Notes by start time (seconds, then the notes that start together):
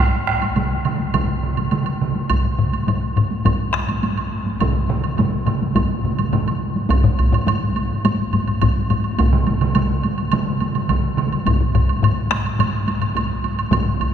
0.27 taiko rim
0.42 taiko high, high woodblock
0.56 taiko mid, taiko high, high woodblock
0.85 taiko mid, high woodblock
1.00 taiko high
1.14 taiko, taiko mid, taiko high, high woodblock
1.43 taiko mid
1.57 taiko mid, taiko high, high woodblock
1.71 taiko mid, taiko high, high woodblock
1.86 high woodblock
2.02 taiko mid
2.15 taiko high
2.30 taiko, taiko low-mid, taiko high, high woodblock
2.45 taiko low-mid
2.59 taiko low-mid
2.73 taiko high, high woodblock
2.87 taiko low-mid, taiko high, high woodblock
3.16 taiko low-mid, high woodblock
3.31 taiko high
3.45 taiko, taiko low-mid, taiko high, high woodblock
3.74 taiko rim
3.89 taiko high, high woodblock
4.03 taiko high, high woodblock
4.17 high woodblock
4.46 taiko high
4.60 taiko, taiko low-mid, taiko mid, taiko high, high woodblock
4.89 taiko low-mid, taiko mid
5.04 high woodblock
5.17 taiko low-mid, taiko mid, taiko high, high woodblock
5.46 taiko low-mid, taiko mid, high woodblock
5.62 taiko high
5.75 taiko, taiko low-mid, taiko mid, taiko high, high woodblock
6.04 taiko low-mid, taiko mid
6.18 taiko low-mid, taiko mid, taiko high, high woodblock
6.32 taiko low-mid, taiko mid, taiko high, high woodblock
6.47 taiko high, high woodblock
6.76 taiko high
6.89 taiko, taiko high, high woodblock
7.04 taiko low-mid, taiko high
7.19 taiko, high woodblock
7.32 taiko low-mid, taiko high, high woodblock
7.47 taiko low-mid, taiko high, high woodblock
7.62 taiko high
7.76 taiko high, high woodblock
7.91 taiko high
8.05 taiko low-mid, taiko high, high woodblock
8.20 taiko high
8.33 taiko low-mid, taiko high, high woodblock
8.47 taiko low-mid, high woodblock
8.62 taiko, taiko low-mid, taiko high, high woodblock
8.77 taiko high
8.90 taiko low-mid, taiko high, high woodblock
9.04 taiko high, high woodblock
9.18 taiko, taiko high, high woodblock
9.33 taiko mid, taiko high
9.47 taiko, taiko high, high woodblock
9.61 taiko mid, taiko high, high woodblock
9.75 taiko mid, taiko high, high woodblock
9.90 taiko high
10.03 taiko high, high woodblock
10.18 taiko high, high woodblock
10.32 taiko mid, taiko high, high woodblock
10.47 taiko high
10.60 taiko mid, taiko high, high woodblock
10.75 taiko mid, high woodblock
10.89 taiko, taiko mid, taiko high, high woodblock
11.04 taiko high
11.17 taiko mid, taiko high, high woodblock
11.32 taiko high, high woodblock
11.46 taiko, taiko low-mid, taiko high, high woodblock
11.60 taiko low-mid, taiko high
11.74 taiko, taiko low-mid, taiko high, high woodblock
11.88 taiko high, high woodblock
12.02 taiko low-mid, taiko high, high woodblock
12.17 taiko high
12.31 taiko rim, taiko high, high woodblock
12.45 taiko high, high woodblock
12.59 taiko low-mid, taiko high, high woodblock
12.73 taiko high
12.87 taiko high, high woodblock
13.01 taiko low-mid, high woodblock
13.16 taiko, taiko high, high woodblock
13.30 taiko high
13.44 taiko high, high woodblock
13.58 taiko high, high woodblock
13.71 taiko, taiko low-mid, taiko mid, taiko high, high woodblock
13.86 taiko high
14.00 taiko, taiko high, high woodblock